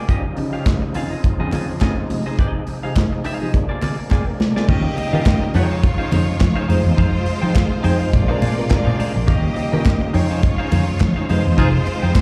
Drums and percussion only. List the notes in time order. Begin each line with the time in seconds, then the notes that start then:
0.09 kick, closed hi-hat
0.37 open hi-hat
0.66 kick, snare, clap, closed hi-hat, high conga
0.94 open hi-hat
1.24 kick, closed hi-hat, muted conga
1.52 clap, open hi-hat, muted conga, low conga
1.80 kick, snare, clap, closed hi-hat, high conga
2.10 open hi-hat, high conga
2.39 kick, closed hi-hat
2.67 open hi-hat, muted conga
2.96 kick, snare, clap, closed hi-hat, high conga
3.24 open hi-hat
3.54 kick, closed hi-hat, muted conga
3.82 clap, open hi-hat, muted conga, low conga
4.11 kick, snare, clap, high conga
4.40 snare, high conga
4.57 snare
4.69 kick, crash
4.97 open hi-hat, muted conga
5.26 kick, snare, clap, closed hi-hat, high conga
5.54 open hi-hat
5.83 kick, closed hi-hat, muted conga
6.12 open hi-hat, muted conga, low conga
6.40 kick, snare, clap, closed hi-hat, high conga
6.70 open hi-hat, high conga
6.98 kick, closed hi-hat
7.26 open hi-hat
7.55 kick, snare, clap, closed hi-hat, high conga
7.84 open hi-hat
8.13 kick, closed hi-hat, muted conga
8.42 open hi-hat, muted conga
8.70 kick, snare, clap, closed hi-hat, high conga
9.00 open hi-hat, high conga
9.28 kick, closed hi-hat
9.56 open hi-hat
9.85 kick, snare, clap, closed hi-hat, high conga
10.14 open hi-hat
10.43 kick, closed hi-hat, muted conga
10.72 open hi-hat, muted conga, low conga
11.00 kick, snare, clap, closed hi-hat, high conga
11.29 open hi-hat, high conga
11.58 kick, closed hi-hat
11.86 open hi-hat, muted conga
12.15 kick, snare, clap, closed hi-hat, high conga